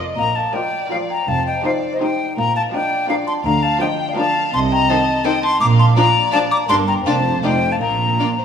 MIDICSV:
0, 0, Header, 1, 8, 480
1, 0, Start_track
1, 0, Key_signature, -2, "major"
1, 0, Tempo, 367197
1, 233, Time_signature, 3, 2, 24, 8
1, 3108, Tempo, 360360
1, 9348, Tempo, 379027
1, 11104, End_track
2, 0, Start_track
2, 0, Title_t, "Flute"
2, 0, Program_c, 0, 73
2, 217, Note_on_c, 0, 82, 90
2, 463, Note_on_c, 0, 81, 74
2, 483, Note_off_c, 0, 82, 0
2, 703, Note_on_c, 0, 79, 73
2, 723, Note_off_c, 0, 81, 0
2, 1184, Note_off_c, 0, 79, 0
2, 1192, Note_on_c, 0, 77, 73
2, 1270, Note_off_c, 0, 77, 0
2, 1441, Note_on_c, 0, 82, 75
2, 1674, Note_on_c, 0, 81, 84
2, 1694, Note_off_c, 0, 82, 0
2, 1904, Note_off_c, 0, 81, 0
2, 1912, Note_on_c, 0, 79, 69
2, 2147, Note_off_c, 0, 79, 0
2, 2161, Note_on_c, 0, 77, 68
2, 2241, Note_off_c, 0, 77, 0
2, 2522, Note_on_c, 0, 75, 64
2, 2623, Note_off_c, 0, 75, 0
2, 2631, Note_on_c, 0, 79, 73
2, 3089, Note_off_c, 0, 79, 0
2, 3097, Note_on_c, 0, 82, 84
2, 3338, Note_off_c, 0, 82, 0
2, 3350, Note_on_c, 0, 81, 76
2, 3430, Note_off_c, 0, 81, 0
2, 3576, Note_on_c, 0, 79, 81
2, 4053, Note_off_c, 0, 79, 0
2, 4059, Note_on_c, 0, 77, 79
2, 4139, Note_off_c, 0, 77, 0
2, 4296, Note_on_c, 0, 84, 82
2, 4376, Note_off_c, 0, 84, 0
2, 4531, Note_on_c, 0, 82, 86
2, 4771, Note_on_c, 0, 81, 79
2, 4791, Note_off_c, 0, 82, 0
2, 4998, Note_off_c, 0, 81, 0
2, 5006, Note_on_c, 0, 79, 82
2, 5089, Note_off_c, 0, 79, 0
2, 5396, Note_on_c, 0, 77, 73
2, 5490, Note_off_c, 0, 77, 0
2, 5498, Note_on_c, 0, 81, 93
2, 5969, Note_off_c, 0, 81, 0
2, 5977, Note_on_c, 0, 84, 106
2, 6057, Note_off_c, 0, 84, 0
2, 6223, Note_on_c, 0, 82, 91
2, 6461, Note_on_c, 0, 81, 88
2, 6481, Note_off_c, 0, 82, 0
2, 6934, Note_on_c, 0, 79, 94
2, 6953, Note_off_c, 0, 81, 0
2, 7165, Note_off_c, 0, 79, 0
2, 7173, Note_on_c, 0, 84, 99
2, 7396, Note_off_c, 0, 84, 0
2, 7404, Note_on_c, 0, 86, 110
2, 7483, Note_off_c, 0, 86, 0
2, 7655, Note_on_c, 0, 84, 91
2, 7735, Note_off_c, 0, 84, 0
2, 7884, Note_on_c, 0, 82, 99
2, 8357, Note_off_c, 0, 82, 0
2, 8365, Note_on_c, 0, 81, 106
2, 8445, Note_off_c, 0, 81, 0
2, 8615, Note_on_c, 0, 86, 96
2, 8695, Note_off_c, 0, 86, 0
2, 8852, Note_on_c, 0, 84, 113
2, 8932, Note_off_c, 0, 84, 0
2, 9097, Note_on_c, 0, 82, 77
2, 9177, Note_off_c, 0, 82, 0
2, 9343, Note_on_c, 0, 81, 84
2, 9804, Note_off_c, 0, 81, 0
2, 9811, Note_on_c, 0, 79, 93
2, 10182, Note_on_c, 0, 81, 72
2, 10201, Note_off_c, 0, 79, 0
2, 10279, Note_off_c, 0, 81, 0
2, 10287, Note_on_c, 0, 82, 78
2, 11104, Note_off_c, 0, 82, 0
2, 11104, End_track
3, 0, Start_track
3, 0, Title_t, "Xylophone"
3, 0, Program_c, 1, 13
3, 241, Note_on_c, 1, 77, 66
3, 462, Note_off_c, 1, 77, 0
3, 487, Note_on_c, 1, 77, 58
3, 705, Note_off_c, 1, 77, 0
3, 722, Note_on_c, 1, 75, 56
3, 1164, Note_off_c, 1, 75, 0
3, 1205, Note_on_c, 1, 74, 66
3, 1423, Note_off_c, 1, 74, 0
3, 1442, Note_on_c, 1, 79, 61
3, 1662, Note_off_c, 1, 79, 0
3, 1678, Note_on_c, 1, 77, 62
3, 1900, Note_off_c, 1, 77, 0
3, 1926, Note_on_c, 1, 75, 54
3, 2143, Note_off_c, 1, 75, 0
3, 2162, Note_on_c, 1, 72, 60
3, 2491, Note_off_c, 1, 72, 0
3, 2521, Note_on_c, 1, 72, 58
3, 2628, Note_off_c, 1, 72, 0
3, 2642, Note_on_c, 1, 75, 65
3, 3080, Note_off_c, 1, 75, 0
3, 3117, Note_on_c, 1, 77, 70
3, 3337, Note_off_c, 1, 77, 0
3, 3351, Note_on_c, 1, 77, 63
3, 3574, Note_off_c, 1, 77, 0
3, 3598, Note_on_c, 1, 75, 60
3, 4040, Note_off_c, 1, 75, 0
3, 4071, Note_on_c, 1, 74, 68
3, 4293, Note_off_c, 1, 74, 0
3, 4308, Note_on_c, 1, 81, 70
3, 4531, Note_off_c, 1, 81, 0
3, 4552, Note_on_c, 1, 77, 67
3, 4773, Note_off_c, 1, 77, 0
3, 4793, Note_on_c, 1, 77, 67
3, 5014, Note_off_c, 1, 77, 0
3, 5025, Note_on_c, 1, 75, 68
3, 5361, Note_off_c, 1, 75, 0
3, 5385, Note_on_c, 1, 74, 69
3, 5497, Note_off_c, 1, 74, 0
3, 5502, Note_on_c, 1, 77, 76
3, 5950, Note_off_c, 1, 77, 0
3, 5988, Note_on_c, 1, 81, 80
3, 6211, Note_off_c, 1, 81, 0
3, 6230, Note_on_c, 1, 79, 76
3, 6451, Note_off_c, 1, 79, 0
3, 6467, Note_on_c, 1, 75, 78
3, 6911, Note_off_c, 1, 75, 0
3, 6944, Note_on_c, 1, 75, 77
3, 7165, Note_off_c, 1, 75, 0
3, 7178, Note_on_c, 1, 81, 93
3, 7400, Note_off_c, 1, 81, 0
3, 7422, Note_on_c, 1, 82, 83
3, 7643, Note_off_c, 1, 82, 0
3, 7660, Note_on_c, 1, 81, 84
3, 7882, Note_off_c, 1, 81, 0
3, 7908, Note_on_c, 1, 77, 80
3, 8352, Note_off_c, 1, 77, 0
3, 8379, Note_on_c, 1, 77, 88
3, 8605, Note_off_c, 1, 77, 0
3, 8618, Note_on_c, 1, 82, 94
3, 8845, Note_off_c, 1, 82, 0
3, 8859, Note_on_c, 1, 81, 95
3, 9086, Note_off_c, 1, 81, 0
3, 9104, Note_on_c, 1, 79, 60
3, 9332, Note_off_c, 1, 79, 0
3, 9348, Note_on_c, 1, 77, 81
3, 9788, Note_off_c, 1, 77, 0
3, 9825, Note_on_c, 1, 75, 65
3, 10157, Note_off_c, 1, 75, 0
3, 10177, Note_on_c, 1, 77, 67
3, 10280, Note_off_c, 1, 77, 0
3, 10296, Note_on_c, 1, 77, 64
3, 11104, Note_off_c, 1, 77, 0
3, 11104, End_track
4, 0, Start_track
4, 0, Title_t, "Violin section"
4, 0, Program_c, 2, 48
4, 226, Note_on_c, 2, 70, 55
4, 677, Note_off_c, 2, 70, 0
4, 714, Note_on_c, 2, 74, 62
4, 1655, Note_off_c, 2, 74, 0
4, 1666, Note_on_c, 2, 72, 57
4, 2139, Note_off_c, 2, 72, 0
4, 2144, Note_on_c, 2, 74, 61
4, 2621, Note_on_c, 2, 72, 60
4, 2627, Note_off_c, 2, 74, 0
4, 3093, Note_off_c, 2, 72, 0
4, 3101, Note_on_c, 2, 70, 59
4, 3576, Note_off_c, 2, 70, 0
4, 3579, Note_on_c, 2, 74, 63
4, 4525, Note_off_c, 2, 74, 0
4, 4541, Note_on_c, 2, 77, 68
4, 5015, Note_off_c, 2, 77, 0
4, 5030, Note_on_c, 2, 79, 79
4, 5508, Note_off_c, 2, 79, 0
4, 5508, Note_on_c, 2, 77, 74
4, 5977, Note_off_c, 2, 77, 0
4, 5991, Note_on_c, 2, 75, 82
4, 6930, Note_off_c, 2, 75, 0
4, 6946, Note_on_c, 2, 75, 76
4, 7411, Note_off_c, 2, 75, 0
4, 7413, Note_on_c, 2, 77, 80
4, 7884, Note_off_c, 2, 77, 0
4, 7891, Note_on_c, 2, 74, 83
4, 8841, Note_off_c, 2, 74, 0
4, 8857, Note_on_c, 2, 70, 73
4, 9336, Note_on_c, 2, 72, 78
4, 9346, Note_off_c, 2, 70, 0
4, 10276, Note_off_c, 2, 72, 0
4, 10297, Note_on_c, 2, 70, 58
4, 10728, Note_off_c, 2, 70, 0
4, 10784, Note_on_c, 2, 74, 71
4, 10882, Note_off_c, 2, 74, 0
4, 11027, Note_on_c, 2, 72, 64
4, 11104, Note_off_c, 2, 72, 0
4, 11104, End_track
5, 0, Start_track
5, 0, Title_t, "Violin section"
5, 0, Program_c, 3, 48
5, 715, Note_on_c, 3, 70, 53
5, 718, Note_on_c, 3, 74, 58
5, 1071, Note_off_c, 3, 70, 0
5, 1073, Note_off_c, 3, 74, 0
5, 1191, Note_on_c, 3, 70, 59
5, 1198, Note_on_c, 3, 74, 59
5, 1550, Note_off_c, 3, 70, 0
5, 1554, Note_off_c, 3, 74, 0
5, 2155, Note_on_c, 3, 67, 56
5, 2157, Note_on_c, 3, 72, 56
5, 2510, Note_off_c, 3, 67, 0
5, 2511, Note_off_c, 3, 72, 0
5, 2621, Note_on_c, 3, 67, 59
5, 2628, Note_on_c, 3, 72, 61
5, 2981, Note_off_c, 3, 67, 0
5, 2985, Note_off_c, 3, 72, 0
5, 3584, Note_on_c, 3, 65, 53
5, 3584, Note_on_c, 3, 70, 59
5, 3944, Note_off_c, 3, 65, 0
5, 3944, Note_off_c, 3, 70, 0
5, 4056, Note_on_c, 3, 65, 61
5, 4061, Note_on_c, 3, 70, 63
5, 4419, Note_off_c, 3, 65, 0
5, 4421, Note_off_c, 3, 70, 0
5, 5013, Note_on_c, 3, 70, 58
5, 5016, Note_on_c, 3, 65, 66
5, 5377, Note_off_c, 3, 70, 0
5, 5378, Note_off_c, 3, 65, 0
5, 5491, Note_on_c, 3, 70, 73
5, 5503, Note_on_c, 3, 65, 68
5, 5856, Note_off_c, 3, 70, 0
5, 5861, Note_off_c, 3, 65, 0
5, 6469, Note_on_c, 3, 69, 63
5, 6470, Note_on_c, 3, 72, 58
5, 6576, Note_off_c, 3, 69, 0
5, 6577, Note_off_c, 3, 72, 0
5, 6931, Note_on_c, 3, 69, 66
5, 6931, Note_on_c, 3, 72, 58
5, 7037, Note_off_c, 3, 69, 0
5, 7038, Note_off_c, 3, 72, 0
5, 7893, Note_on_c, 3, 65, 68
5, 7897, Note_on_c, 3, 74, 65
5, 8000, Note_off_c, 3, 65, 0
5, 8004, Note_off_c, 3, 74, 0
5, 8369, Note_on_c, 3, 65, 59
5, 8376, Note_on_c, 3, 74, 66
5, 8476, Note_off_c, 3, 65, 0
5, 8482, Note_off_c, 3, 74, 0
5, 8860, Note_on_c, 3, 74, 60
5, 8861, Note_on_c, 3, 70, 65
5, 8967, Note_off_c, 3, 70, 0
5, 8967, Note_off_c, 3, 74, 0
5, 9343, Note_on_c, 3, 65, 59
5, 9351, Note_on_c, 3, 74, 66
5, 9445, Note_off_c, 3, 65, 0
5, 9453, Note_off_c, 3, 74, 0
5, 9818, Note_on_c, 3, 74, 58
5, 9820, Note_on_c, 3, 65, 59
5, 9920, Note_off_c, 3, 74, 0
5, 9922, Note_off_c, 3, 65, 0
5, 10791, Note_on_c, 3, 65, 51
5, 10793, Note_on_c, 3, 74, 52
5, 10893, Note_off_c, 3, 65, 0
5, 10894, Note_off_c, 3, 74, 0
5, 11104, End_track
6, 0, Start_track
6, 0, Title_t, "Viola section"
6, 0, Program_c, 4, 48
6, 0, Note_on_c, 4, 75, 54
6, 234, Note_off_c, 4, 75, 0
6, 718, Note_on_c, 4, 53, 54
6, 718, Note_on_c, 4, 65, 55
6, 1073, Note_off_c, 4, 53, 0
6, 1073, Note_off_c, 4, 65, 0
6, 1201, Note_on_c, 4, 65, 56
6, 1202, Note_on_c, 4, 53, 52
6, 1556, Note_off_c, 4, 53, 0
6, 1556, Note_off_c, 4, 65, 0
6, 2160, Note_on_c, 4, 63, 58
6, 2163, Note_on_c, 4, 53, 53
6, 2513, Note_off_c, 4, 63, 0
6, 2515, Note_off_c, 4, 53, 0
6, 2638, Note_on_c, 4, 53, 54
6, 2639, Note_on_c, 4, 63, 60
6, 2990, Note_off_c, 4, 53, 0
6, 2991, Note_off_c, 4, 63, 0
6, 3592, Note_on_c, 4, 62, 57
6, 3596, Note_on_c, 4, 53, 54
6, 3948, Note_off_c, 4, 62, 0
6, 3950, Note_off_c, 4, 53, 0
6, 4064, Note_on_c, 4, 62, 61
6, 4065, Note_on_c, 4, 53, 58
6, 4423, Note_off_c, 4, 62, 0
6, 4424, Note_off_c, 4, 53, 0
6, 5025, Note_on_c, 4, 62, 58
6, 5031, Note_on_c, 4, 53, 66
6, 5383, Note_off_c, 4, 62, 0
6, 5386, Note_off_c, 4, 53, 0
6, 5499, Note_on_c, 4, 53, 68
6, 5499, Note_on_c, 4, 62, 66
6, 5859, Note_off_c, 4, 62, 0
6, 5860, Note_off_c, 4, 53, 0
6, 6469, Note_on_c, 4, 51, 59
6, 6471, Note_on_c, 4, 63, 57
6, 6576, Note_off_c, 4, 51, 0
6, 6578, Note_off_c, 4, 63, 0
6, 6943, Note_on_c, 4, 51, 61
6, 6943, Note_on_c, 4, 63, 67
6, 7049, Note_off_c, 4, 51, 0
6, 7050, Note_off_c, 4, 63, 0
6, 7894, Note_on_c, 4, 53, 62
6, 7894, Note_on_c, 4, 62, 62
6, 8001, Note_off_c, 4, 53, 0
6, 8001, Note_off_c, 4, 62, 0
6, 8382, Note_on_c, 4, 53, 58
6, 8385, Note_on_c, 4, 62, 60
6, 8489, Note_off_c, 4, 53, 0
6, 8492, Note_off_c, 4, 62, 0
6, 8865, Note_on_c, 4, 55, 53
6, 8869, Note_on_c, 4, 62, 61
6, 8971, Note_off_c, 4, 55, 0
6, 8975, Note_off_c, 4, 62, 0
6, 9351, Note_on_c, 4, 58, 52
6, 9351, Note_on_c, 4, 62, 58
6, 9452, Note_off_c, 4, 62, 0
6, 9453, Note_off_c, 4, 58, 0
6, 9821, Note_on_c, 4, 63, 50
6, 9823, Note_on_c, 4, 57, 51
6, 9922, Note_off_c, 4, 63, 0
6, 9925, Note_off_c, 4, 57, 0
6, 10786, Note_on_c, 4, 58, 44
6, 10791, Note_on_c, 4, 62, 48
6, 10888, Note_off_c, 4, 58, 0
6, 10892, Note_off_c, 4, 62, 0
6, 11104, End_track
7, 0, Start_track
7, 0, Title_t, "Cello section"
7, 0, Program_c, 5, 48
7, 0, Note_on_c, 5, 41, 61
7, 133, Note_off_c, 5, 41, 0
7, 233, Note_on_c, 5, 46, 62
7, 615, Note_off_c, 5, 46, 0
7, 1674, Note_on_c, 5, 41, 67
7, 2053, Note_off_c, 5, 41, 0
7, 3101, Note_on_c, 5, 46, 72
7, 3484, Note_off_c, 5, 46, 0
7, 4539, Note_on_c, 5, 50, 75
7, 4923, Note_off_c, 5, 50, 0
7, 5989, Note_on_c, 5, 48, 69
7, 6388, Note_off_c, 5, 48, 0
7, 7424, Note_on_c, 5, 46, 81
7, 7819, Note_off_c, 5, 46, 0
7, 8869, Note_on_c, 5, 43, 76
7, 9270, Note_off_c, 5, 43, 0
7, 9346, Note_on_c, 5, 41, 76
7, 9740, Note_off_c, 5, 41, 0
7, 9825, Note_on_c, 5, 41, 75
7, 10222, Note_off_c, 5, 41, 0
7, 10295, Note_on_c, 5, 46, 65
7, 10703, Note_off_c, 5, 46, 0
7, 11104, End_track
8, 0, Start_track
8, 0, Title_t, "Double bass section"
8, 0, Program_c, 6, 48
8, 228, Note_on_c, 6, 34, 67
8, 612, Note_off_c, 6, 34, 0
8, 1674, Note_on_c, 6, 29, 67
8, 2053, Note_off_c, 6, 29, 0
8, 3100, Note_on_c, 6, 34, 67
8, 3484, Note_off_c, 6, 34, 0
8, 4534, Note_on_c, 6, 38, 74
8, 4920, Note_off_c, 6, 38, 0
8, 5977, Note_on_c, 6, 36, 74
8, 6381, Note_off_c, 6, 36, 0
8, 7415, Note_on_c, 6, 34, 77
8, 7815, Note_off_c, 6, 34, 0
8, 8860, Note_on_c, 6, 31, 69
8, 9266, Note_off_c, 6, 31, 0
8, 9340, Note_on_c, 6, 29, 75
8, 9738, Note_off_c, 6, 29, 0
8, 9808, Note_on_c, 6, 29, 67
8, 10213, Note_off_c, 6, 29, 0
8, 10289, Note_on_c, 6, 34, 66
8, 10700, Note_off_c, 6, 34, 0
8, 11104, End_track
0, 0, End_of_file